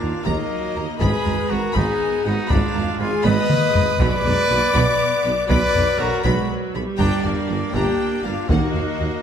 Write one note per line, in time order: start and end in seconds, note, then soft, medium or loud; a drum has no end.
0.00 0.09 D#2 medium
0.00 0.12 D#2 medium
0.00 0.26 A#3 medium
0.00 0.28 D4 medium
0.00 0.26 F4 loud
0.00 0.26 F5 medium
0.25 0.34 D#2 medium
0.25 0.35 D#2 medium
0.25 0.37 D#2 medium
0.25 0.51 G#3 medium
0.25 0.83 A#3 medium
0.25 0.99 D#4 loud
0.25 1.01 D#5 medium
0.25 0.49 A#5 medium
0.25 taiko medium
0.51 0.75 F#3 medium
0.75 0.84 D#2 medium
0.75 0.87 D#2 medium
0.75 1.00 A#3 medium
0.75 0.83 A#5 medium
0.99 1.08 G#1 medium
0.99 1.12 G#1 medium
0.99 1.09 G#2 loud
0.99 1.75 G#3 medium
0.99 1.52 G#4 loud
0.99 1.51 B4 loud
0.99 1.49 B5 medium
0.99 1.24 B5 medium
0.99 taiko loud
1.24 1.36 G#1 medium
1.24 1.34 G#1 medium
1.24 1.34 G#2 medium
1.24 1.32 A#5 medium
1.24 taiko low medium
1.49 1.61 G#1 medium
1.49 1.60 G#1 medium
1.49 1.59 G#2 medium
1.49 1.77 F#4 medium
1.49 1.76 A#4 loud
1.49 1.75 A#5 medium
1.49 1.57 B5 medium
1.73 1.83 G#1 medium
1.73 1.86 G#1 medium
1.73 1.84 G#2 medium
1.73 2.49 B3 medium
1.73 2.24 D#4 loud
1.73 2.26 G#4 loud
1.73 2.24 G#5 medium
1.73 1.98 B5 medium
1.73 taiko medium
2.23 2.36 G#1 medium
2.23 2.34 G#1 medium
2.23 2.34 G#2 medium
2.23 2.52 D#4 medium
2.23 2.49 F#5 medium
2.23 2.33 B5 medium
2.28 2.52 F#4 loud
2.48 2.61 G#1 medium
2.48 2.59 G#1 loud
2.48 2.59 G#2 loud
2.48 3.24 G#3 medium
2.48 3.00 D4 loud
2.48 3.00 F4 loud
2.48 2.99 F5 medium
2.48 2.73 B5 medium
2.48 taiko loud
2.74 2.83 G#1 medium
2.74 2.86 G#1 medium
2.74 2.85 G#2 medium
2.74 2.82 A#5 medium
2.74 taiko low medium
2.99 3.07 G#1 medium
2.99 3.10 G#1 medium
2.99 3.09 G#2 medium
2.99 3.25 F4 medium
2.99 3.25 G#4 loud
2.99 3.25 G#5 medium
2.99 3.07 B5 medium
3.23 3.33 G#1 loud
3.23 3.36 G#1 loud
3.23 3.34 G#2 loud
3.23 3.50 B3 medium
3.23 3.99 B4 loud
3.23 3.84 D#5 loud
3.23 3.47 B5 loud
3.23 4.00 D#6 loud
3.23 taiko high medium
3.50 3.75 A#3 medium
3.50 taiko mid medium
3.73 3.85 G#1 medium
3.73 3.83 G#1 medium
3.73 3.84 G#2 medium
3.73 3.99 G#3 medium
3.73 3.81 B5 medium
3.73 taiko low loud
3.98 4.08 B1 loud
3.98 4.10 B1 loud
3.98 4.08 B2 loud
3.98 4.24 F#3 medium
3.98 5.20 B4 loud
3.98 5.47 D5 loud
3.98 4.23 B5 medium
3.98 5.47 D6 loud
3.98 taiko loud
4.24 4.34 B1 medium
4.24 4.33 B1 medium
4.24 4.33 B2 medium
4.24 4.49 G#3 medium
4.24 4.34 A#5 medium
4.24 taiko low medium
4.48 4.58 B1 medium
4.48 4.60 B1 medium
4.48 4.58 B2 medium
4.48 4.73 A#3 medium
4.48 4.58 B5 medium
4.73 4.83 B1 loud
4.73 4.85 B1 loud
4.73 4.83 B2 loud
4.73 5.49 B3 loud
4.73 4.98 B5 loud
4.73 taiko medium
5.24 5.33 B1 medium
5.24 5.35 B1 medium
5.24 5.33 B2 medium
5.24 5.32 B5 medium
5.48 5.58 B1 loud
5.48 5.60 B1 loud
5.48 5.57 B2 loud
5.48 6.24 F#3 medium
5.48 6.01 B4 loud
5.48 5.99 D5 loud
5.48 5.73 B5 medium
5.48 5.98 D6 loud
5.48 taiko loud
5.74 5.82 B1 medium
5.74 5.85 B1 medium
5.74 5.83 B2 medium
5.74 5.82 A#5 medium
5.74 taiko low medium
5.99 6.10 B1 medium
5.99 6.08 B1 medium
5.99 6.07 B2 medium
5.99 6.24 F#4 loud
5.99 6.25 A#4 loud
5.99 6.24 A#5 loud
5.99 6.08 B5 medium
6.22 6.35 B1 loud
6.22 6.33 B1 loud
6.22 6.32 B2 loud
6.22 6.49 G#3 medium
6.22 6.49 F#4 medium
6.22 6.49 B4 loud
6.22 6.48 B5 medium
6.22 6.48 B5 loud
6.22 taiko medium
6.49 6.74 F#3 medium
6.73 6.83 B1 medium
6.73 6.85 B1 medium
6.73 6.82 B2 medium
6.73 7.74 G3 medium
6.73 6.82 B5 medium
6.97 7.09 G1 loud
6.97 7.07 G1 medium
6.97 7.07 G2 loud
6.97 7.23 D4 loud
6.97 7.23 G4 loud
6.97 7.22 G5 loud
6.97 7.22 A#5 medium
6.97 taiko loud
7.22 7.34 G1 medium
7.22 7.33 G1 medium
7.22 7.33 G2 medium
7.22 7.76 A#3 medium
7.22 7.75 D4 loud
7.22 7.73 D5 medium
7.22 7.31 A5 medium
7.22 taiko low medium
7.47 7.59 G1 medium
7.47 7.57 G1 medium
7.47 7.57 G2 medium
7.47 7.55 A#5 medium
7.73 7.82 G1 medium
7.73 7.85 G1 medium
7.73 7.82 G2 medium
7.73 8.49 A#3 medium
7.73 8.24 D4 loud
7.73 8.24 G4 loud
7.73 8.23 G5 loud
7.73 7.98 A#5 medium
7.73 taiko medium
8.22 8.32 G1 medium
8.22 8.34 G1 medium
8.22 8.33 G2 medium
8.22 8.51 D4 medium
8.22 8.49 F4 loud
8.22 8.48 F5 medium
8.22 8.33 A#5 medium
8.47 8.59 D#2 medium
8.47 8.57 D#2 medium
8.47 8.58 D#2 medium
8.47 9.20 D#3 loud
8.47 9.22 A#3 medium
8.47 9.22 F#4 medium
8.47 9.22 D#5 medium
8.47 8.73 F#5 medium
8.47 taiko loud
8.51 9.22 D#4 loud
8.73 8.82 D#2 medium
8.73 8.84 D#2 medium
8.73 8.83 D#2 medium
8.73 8.81 F5 medium
8.73 taiko low medium
8.98 9.09 D#2 medium
8.98 9.08 D#2 medium
8.98 9.06 F#5 medium